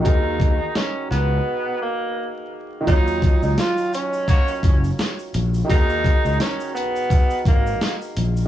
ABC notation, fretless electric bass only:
X:1
M:4/4
L:1/16
Q:"Swing 16ths" 1/4=85
K:Ebm
V:1 name="Fretless electric bass" clef=bass
E,,4 z2 D,,2 z8 | E,,3 D,, z6 G,,,2 z2 B,,,2 | E,,3 D,, z6 A,,,2 z2 B,,,2 |]